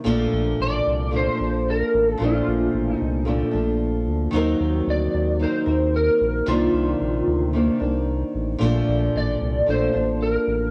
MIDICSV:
0, 0, Header, 1, 5, 480
1, 0, Start_track
1, 0, Key_signature, -2, "major"
1, 0, Tempo, 534283
1, 53, Time_signature, 4, 2, 24, 8
1, 9619, End_track
2, 0, Start_track
2, 0, Title_t, "Electric slide guitar"
2, 0, Program_c, 0, 29
2, 554, Note_on_c, 0, 74, 121
2, 1039, Note_off_c, 0, 74, 0
2, 1046, Note_on_c, 0, 72, 97
2, 1525, Note_off_c, 0, 72, 0
2, 1528, Note_on_c, 0, 70, 103
2, 1878, Note_off_c, 0, 70, 0
2, 1878, Note_on_c, 0, 69, 103
2, 2006, Note_off_c, 0, 69, 0
2, 2017, Note_on_c, 0, 65, 72
2, 2646, Note_off_c, 0, 65, 0
2, 2646, Note_on_c, 0, 63, 72
2, 2922, Note_off_c, 0, 63, 0
2, 4404, Note_on_c, 0, 74, 113
2, 4875, Note_on_c, 0, 72, 91
2, 4885, Note_off_c, 0, 74, 0
2, 5354, Note_on_c, 0, 70, 99
2, 5361, Note_off_c, 0, 72, 0
2, 5824, Note_on_c, 0, 65, 75
2, 5840, Note_off_c, 0, 70, 0
2, 6745, Note_off_c, 0, 65, 0
2, 8243, Note_on_c, 0, 74, 114
2, 8712, Note_off_c, 0, 74, 0
2, 8715, Note_on_c, 0, 72, 95
2, 9153, Note_off_c, 0, 72, 0
2, 9186, Note_on_c, 0, 70, 96
2, 9619, Note_off_c, 0, 70, 0
2, 9619, End_track
3, 0, Start_track
3, 0, Title_t, "Tine electric piano"
3, 0, Program_c, 1, 4
3, 0, Control_c, 1, 64, 127
3, 43, Note_on_c, 1, 69, 92
3, 53, Note_on_c, 1, 62, 82
3, 63, Note_on_c, 1, 58, 102
3, 63, Note_on_c, 1, 65, 77
3, 64, Control_c, 1, 64, 0
3, 201, Control_c, 1, 64, 127
3, 733, Note_off_c, 1, 69, 0
3, 738, Note_off_c, 1, 62, 0
3, 743, Note_off_c, 1, 58, 0
3, 743, Note_off_c, 1, 65, 0
3, 1002, Note_on_c, 1, 69, 69
3, 1010, Note_on_c, 1, 62, 65
3, 1015, Note_on_c, 1, 65, 66
3, 1023, Note_on_c, 1, 58, 83
3, 1693, Note_off_c, 1, 69, 0
3, 1697, Note_off_c, 1, 62, 0
3, 1700, Note_off_c, 1, 65, 0
3, 1704, Note_off_c, 1, 58, 0
3, 1969, Note_on_c, 1, 57, 70
3, 1975, Note_on_c, 1, 62, 73
3, 1987, Note_on_c, 1, 65, 72
3, 1994, Note_on_c, 1, 72, 76
3, 2657, Note_off_c, 1, 57, 0
3, 2660, Note_off_c, 1, 62, 0
3, 2666, Note_off_c, 1, 65, 0
3, 2670, Note_off_c, 1, 72, 0
3, 2929, Note_on_c, 1, 69, 93
3, 2937, Note_on_c, 1, 62, 81
3, 2944, Note_on_c, 1, 65, 80
3, 2954, Note_on_c, 1, 58, 102
3, 3617, Note_off_c, 1, 69, 0
3, 3621, Note_off_c, 1, 62, 0
3, 3625, Note_off_c, 1, 65, 0
3, 3630, Note_off_c, 1, 58, 0
3, 3890, Note_on_c, 1, 58, 95
3, 3900, Note_on_c, 1, 63, 88
3, 3906, Note_on_c, 1, 66, 85
3, 3908, Control_c, 1, 64, 0
3, 3911, Note_on_c, 1, 72, 98
3, 4093, Control_c, 1, 64, 127
3, 4578, Note_off_c, 1, 58, 0
3, 4583, Note_off_c, 1, 63, 0
3, 4586, Note_off_c, 1, 66, 0
3, 4588, Note_off_c, 1, 72, 0
3, 4855, Note_on_c, 1, 58, 71
3, 4859, Note_on_c, 1, 63, 62
3, 4865, Note_on_c, 1, 66, 67
3, 4874, Note_on_c, 1, 72, 80
3, 5540, Note_off_c, 1, 58, 0
3, 5543, Note_off_c, 1, 63, 0
3, 5546, Note_off_c, 1, 66, 0
3, 5550, Note_off_c, 1, 72, 0
3, 5819, Note_on_c, 1, 58, 69
3, 5825, Note_on_c, 1, 62, 76
3, 5828, Control_c, 1, 64, 0
3, 5833, Note_on_c, 1, 63, 69
3, 5836, Note_on_c, 1, 72, 81
3, 5972, Control_c, 1, 64, 127
3, 6502, Note_off_c, 1, 58, 0
3, 6505, Note_off_c, 1, 62, 0
3, 6509, Note_off_c, 1, 63, 0
3, 6511, Note_off_c, 1, 72, 0
3, 6779, Note_on_c, 1, 58, 86
3, 6784, Note_on_c, 1, 62, 84
3, 6795, Note_on_c, 1, 63, 78
3, 6800, Note_on_c, 1, 72, 88
3, 7462, Note_off_c, 1, 58, 0
3, 7465, Note_off_c, 1, 62, 0
3, 7470, Note_off_c, 1, 63, 0
3, 7473, Note_off_c, 1, 72, 0
3, 7726, Note_on_c, 1, 69, 93
3, 7735, Note_on_c, 1, 62, 78
3, 7743, Note_on_c, 1, 65, 78
3, 7749, Note_on_c, 1, 58, 96
3, 7750, Control_c, 1, 64, 0
3, 7881, Control_c, 1, 64, 127
3, 8415, Note_off_c, 1, 69, 0
3, 8419, Note_off_c, 1, 62, 0
3, 8424, Note_off_c, 1, 65, 0
3, 8426, Note_off_c, 1, 58, 0
3, 8689, Note_on_c, 1, 69, 70
3, 8698, Note_on_c, 1, 62, 72
3, 8702, Note_on_c, 1, 65, 62
3, 8711, Note_on_c, 1, 58, 85
3, 9376, Note_off_c, 1, 69, 0
3, 9380, Note_off_c, 1, 62, 0
3, 9383, Note_off_c, 1, 65, 0
3, 9387, Note_off_c, 1, 58, 0
3, 9619, End_track
4, 0, Start_track
4, 0, Title_t, "Nylon-string guitar"
4, 0, Program_c, 2, 24
4, 35, Note_on_c, 2, 46, 86
4, 53, Note_on_c, 2, 53, 99
4, 69, Note_on_c, 2, 57, 98
4, 85, Note_on_c, 2, 62, 102
4, 987, Note_off_c, 2, 46, 0
4, 997, Note_on_c, 2, 46, 59
4, 1001, Note_off_c, 2, 53, 0
4, 1012, Note_off_c, 2, 57, 0
4, 1012, Note_on_c, 2, 53, 63
4, 1021, Note_off_c, 2, 62, 0
4, 1022, Note_on_c, 2, 57, 65
4, 1031, Note_on_c, 2, 62, 58
4, 1221, Note_off_c, 2, 62, 0
4, 1232, Note_on_c, 2, 62, 52
4, 1246, Note_off_c, 2, 46, 0
4, 1253, Note_off_c, 2, 53, 0
4, 1259, Note_off_c, 2, 57, 0
4, 1267, Note_on_c, 2, 53, 41
4, 1953, Note_on_c, 2, 46, 82
4, 1962, Note_off_c, 2, 53, 0
4, 1964, Note_off_c, 2, 62, 0
4, 1973, Note_on_c, 2, 53, 80
4, 1988, Note_on_c, 2, 57, 93
4, 2007, Note_on_c, 2, 62, 86
4, 2910, Note_off_c, 2, 46, 0
4, 2921, Note_on_c, 2, 46, 61
4, 2922, Note_off_c, 2, 53, 0
4, 2932, Note_off_c, 2, 57, 0
4, 2933, Note_on_c, 2, 53, 64
4, 2941, Note_off_c, 2, 62, 0
4, 2943, Note_on_c, 2, 57, 71
4, 2951, Note_on_c, 2, 62, 67
4, 3146, Note_off_c, 2, 62, 0
4, 3157, Note_on_c, 2, 62, 57
4, 3164, Note_off_c, 2, 57, 0
4, 3169, Note_off_c, 2, 46, 0
4, 3174, Note_on_c, 2, 57, 53
4, 3175, Note_off_c, 2, 53, 0
4, 3194, Note_on_c, 2, 53, 48
4, 3870, Note_on_c, 2, 51, 93
4, 3884, Note_off_c, 2, 53, 0
4, 3887, Note_off_c, 2, 62, 0
4, 3888, Note_on_c, 2, 54, 101
4, 3896, Note_off_c, 2, 57, 0
4, 3901, Note_on_c, 2, 60, 102
4, 3914, Note_on_c, 2, 63, 99
4, 3923, Note_on_c, 2, 70, 97
4, 4837, Note_off_c, 2, 54, 0
4, 4848, Note_on_c, 2, 54, 55
4, 4856, Note_off_c, 2, 60, 0
4, 4860, Note_on_c, 2, 60, 61
4, 4869, Note_off_c, 2, 63, 0
4, 4873, Note_on_c, 2, 63, 55
4, 4879, Note_off_c, 2, 70, 0
4, 4883, Note_on_c, 2, 70, 58
4, 5074, Note_off_c, 2, 70, 0
4, 5085, Note_on_c, 2, 70, 53
4, 5091, Note_off_c, 2, 63, 0
4, 5093, Note_off_c, 2, 54, 0
4, 5099, Note_off_c, 2, 60, 0
4, 5102, Note_on_c, 2, 63, 45
4, 5119, Note_on_c, 2, 60, 39
4, 5802, Note_off_c, 2, 51, 0
4, 5805, Note_on_c, 2, 48, 86
4, 5826, Note_on_c, 2, 51, 91
4, 5832, Note_off_c, 2, 70, 0
4, 5838, Note_off_c, 2, 60, 0
4, 5842, Note_on_c, 2, 58, 90
4, 5852, Note_off_c, 2, 63, 0
4, 5856, Note_on_c, 2, 62, 87
4, 6755, Note_off_c, 2, 48, 0
4, 6766, Note_on_c, 2, 48, 61
4, 6767, Note_off_c, 2, 51, 0
4, 6778, Note_on_c, 2, 51, 59
4, 6785, Note_off_c, 2, 58, 0
4, 6789, Note_on_c, 2, 58, 63
4, 6793, Note_off_c, 2, 62, 0
4, 6800, Note_on_c, 2, 62, 69
4, 6994, Note_off_c, 2, 62, 0
4, 7005, Note_on_c, 2, 62, 56
4, 7012, Note_off_c, 2, 48, 0
4, 7012, Note_off_c, 2, 58, 0
4, 7018, Note_off_c, 2, 51, 0
4, 7023, Note_on_c, 2, 58, 48
4, 7036, Note_on_c, 2, 51, 42
4, 7713, Note_on_c, 2, 46, 96
4, 7729, Note_off_c, 2, 51, 0
4, 7733, Note_on_c, 2, 53, 97
4, 7749, Note_off_c, 2, 58, 0
4, 7753, Note_on_c, 2, 57, 101
4, 7762, Note_off_c, 2, 62, 0
4, 7766, Note_on_c, 2, 62, 107
4, 8670, Note_off_c, 2, 46, 0
4, 8681, Note_off_c, 2, 53, 0
4, 8681, Note_on_c, 2, 46, 60
4, 8692, Note_on_c, 2, 53, 57
4, 8693, Note_off_c, 2, 57, 0
4, 8703, Note_on_c, 2, 57, 71
4, 8704, Note_off_c, 2, 62, 0
4, 8715, Note_on_c, 2, 62, 65
4, 8910, Note_off_c, 2, 62, 0
4, 8921, Note_on_c, 2, 62, 49
4, 8928, Note_off_c, 2, 46, 0
4, 8934, Note_off_c, 2, 53, 0
4, 8940, Note_off_c, 2, 57, 0
4, 8955, Note_on_c, 2, 53, 45
4, 9619, Note_off_c, 2, 53, 0
4, 9619, Note_off_c, 2, 62, 0
4, 9619, End_track
5, 0, Start_track
5, 0, Title_t, "Analog synth bass"
5, 0, Program_c, 3, 38
5, 54, Note_on_c, 3, 34, 104
5, 246, Note_off_c, 3, 34, 0
5, 297, Note_on_c, 3, 34, 103
5, 488, Note_off_c, 3, 34, 0
5, 538, Note_on_c, 3, 33, 96
5, 729, Note_off_c, 3, 33, 0
5, 779, Note_on_c, 3, 36, 89
5, 1162, Note_off_c, 3, 36, 0
5, 1261, Note_on_c, 3, 34, 97
5, 1643, Note_off_c, 3, 34, 0
5, 1744, Note_on_c, 3, 33, 107
5, 1933, Note_off_c, 3, 33, 0
5, 1982, Note_on_c, 3, 34, 102
5, 2172, Note_off_c, 3, 34, 0
5, 2223, Note_on_c, 3, 34, 110
5, 2413, Note_off_c, 3, 34, 0
5, 2460, Note_on_c, 3, 33, 87
5, 2651, Note_off_c, 3, 33, 0
5, 2705, Note_on_c, 3, 36, 92
5, 3086, Note_off_c, 3, 36, 0
5, 3182, Note_on_c, 3, 34, 99
5, 3654, Note_on_c, 3, 38, 103
5, 3668, Note_off_c, 3, 34, 0
5, 3848, Note_off_c, 3, 38, 0
5, 3895, Note_on_c, 3, 39, 105
5, 4088, Note_off_c, 3, 39, 0
5, 4135, Note_on_c, 3, 39, 104
5, 4328, Note_off_c, 3, 39, 0
5, 4377, Note_on_c, 3, 38, 98
5, 4569, Note_off_c, 3, 38, 0
5, 4620, Note_on_c, 3, 39, 94
5, 4907, Note_off_c, 3, 39, 0
5, 5092, Note_on_c, 3, 39, 109
5, 5478, Note_off_c, 3, 39, 0
5, 5579, Note_on_c, 3, 34, 89
5, 5770, Note_off_c, 3, 34, 0
5, 5817, Note_on_c, 3, 36, 109
5, 6009, Note_off_c, 3, 36, 0
5, 6050, Note_on_c, 3, 36, 100
5, 6245, Note_off_c, 3, 36, 0
5, 6299, Note_on_c, 3, 34, 94
5, 6490, Note_off_c, 3, 34, 0
5, 6535, Note_on_c, 3, 38, 94
5, 6920, Note_off_c, 3, 38, 0
5, 7017, Note_on_c, 3, 36, 99
5, 7401, Note_off_c, 3, 36, 0
5, 7498, Note_on_c, 3, 33, 92
5, 7690, Note_off_c, 3, 33, 0
5, 7741, Note_on_c, 3, 34, 96
5, 7931, Note_off_c, 3, 34, 0
5, 7982, Note_on_c, 3, 34, 111
5, 8172, Note_off_c, 3, 34, 0
5, 8223, Note_on_c, 3, 33, 103
5, 8412, Note_off_c, 3, 33, 0
5, 8457, Note_on_c, 3, 36, 90
5, 8649, Note_off_c, 3, 36, 0
5, 8697, Note_on_c, 3, 34, 98
5, 8889, Note_off_c, 3, 34, 0
5, 8940, Note_on_c, 3, 33, 98
5, 9322, Note_off_c, 3, 33, 0
5, 9410, Note_on_c, 3, 33, 93
5, 9604, Note_off_c, 3, 33, 0
5, 9619, End_track
0, 0, End_of_file